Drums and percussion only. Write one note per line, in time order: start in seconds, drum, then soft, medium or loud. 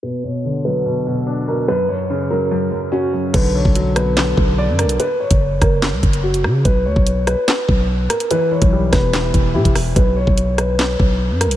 3.34 kick loud
3.34 closed hi-hat medium
3.34 crash loud
3.65 kick medium
3.75 closed hi-hat medium
3.96 cross-stick medium
3.96 closed hi-hat medium
4.17 snare loud
4.17 clap medium
4.17 closed hi-hat medium
4.37 kick medium
4.79 cross-stick medium
4.79 closed hi-hat medium
4.89 closed hi-hat medium
5.00 closed hi-hat medium
5.31 kick loud
5.31 closed hi-hat medium
5.62 kick loud
5.62 cross-stick medium
5.62 closed hi-hat medium
5.82 snare loud
5.82 clap medium
5.82 closed hi-hat medium
6.03 kick medium
6.03 closed hi-hat medium
6.13 closed hi-hat medium
6.34 closed hi-hat medium
6.44 cross-stick medium
6.65 kick loud
6.65 closed hi-hat medium
6.96 kick medium
7.07 closed hi-hat medium
7.27 cross-stick medium
7.27 closed hi-hat medium
7.48 snare loud
7.48 clap medium
7.48 closed hi-hat medium
7.69 kick medium
8.10 cross-stick medium
8.10 closed hi-hat medium
8.20 closed hi-hat medium
8.31 closed hi-hat medium
8.62 kick medium
8.62 closed hi-hat medium
8.93 kick loud
8.93 cross-stick medium
8.93 snare medium
8.93 closed hi-hat medium
9.13 snare loud
9.13 clap medium
9.13 closed hi-hat medium
9.34 kick medium
9.34 closed hi-hat medium
9.65 kick medium
9.65 closed hi-hat medium
9.75 cross-stick medium
9.75 open hi-hat medium
9.96 kick loud
9.96 closed hi-hat medium
10.27 kick medium
10.38 closed hi-hat medium
10.58 cross-stick medium
10.58 closed hi-hat medium
10.79 snare loud
10.79 clap medium
10.79 closed hi-hat medium
11.00 kick medium
11.41 cross-stick medium
11.41 closed hi-hat medium
11.51 closed hi-hat medium